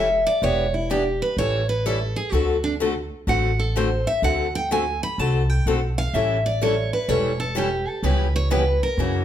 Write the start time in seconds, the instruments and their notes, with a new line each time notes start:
Already playing: upright bass E1, steel-string acoustic guitar E5
0.27 steel-string acoustic guitar D5
0.42 upright bass E1, steel-string acoustic guitar E3 B3 D4 G4 C#5
0.74 steel-string acoustic guitar E4
0.90 steel-string acoustic guitar E3 B3 D4 G4
1.22 steel-string acoustic guitar B4
1.37 upright bass A1, steel-string acoustic guitar E3 G3 C#4 E4 A4 C#5
1.69 steel-string acoustic guitar B4
1.86 steel-string acoustic guitar E3 G3 C#4 E4 A4
2.16 steel-string acoustic guitar G#4
2.32 upright bass D2, steel-string acoustic guitar D3 A3 C4 F#4 A4
2.64 steel-string acoustic guitar D4
2.80 steel-string acoustic guitar D3 A3 C4 F#4 A4
3.27 upright bass A1, steel-string acoustic guitar D3 A3 C4 F#4 A4 F#5
3.60 steel-string acoustic guitar A4
3.76 steel-string acoustic guitar D3 A3 C4 F#4 A4 C5
4.07 steel-string acoustic guitar E5
4.22 upright bass D2, steel-string acoustic guitar D3 A3 C4 F#4 A4 F#5
4.55 steel-string acoustic guitar G5
4.71 steel-string acoustic guitar D3 A3 C4 F#4 A4 G#5
5.03 steel-string acoustic guitar B5
5.18 upright bass C2, steel-string acoustic guitar D3 A3 C4 F#4 A4 A5
5.50 steel-string acoustic guitar G5
5.66 upright bass B1, steel-string acoustic guitar D3 A3 C4 F#4 A4 F#5
5.98 steel-string acoustic guitar F5
6.13 upright bass A1, steel-string acoustic guitar E3 G3 C#4 E4 A4 E5
6.46 steel-string acoustic guitar D5
6.62 steel-string acoustic guitar E3 G3 C#4 E4 A4 C#5
6.93 steel-string acoustic guitar B4
7.08 upright bass E1, steel-string acoustic guitar E3 G3 C#4 E4 A4 C#5
7.40 steel-string acoustic guitar A4
7.55 steel-string acoustic guitar E3 G3 C#4 E4 G4 A4
7.88 steel-string acoustic guitar A4
8.03 upright bass C#2, steel-string acoustic guitar C#3 E3 G3 B3 C#4 E4 G4 B4
8.36 steel-string acoustic guitar C#5
8.50 steel-string acoustic guitar C#3 E3 G3 B3 C#4 E4 G4 B4
8.83 steel-string acoustic guitar A#4
8.97 upright bass F#2, steel-string acoustic guitar C#3 E3 F#3 A#3 C#4 E4 F#4 A#4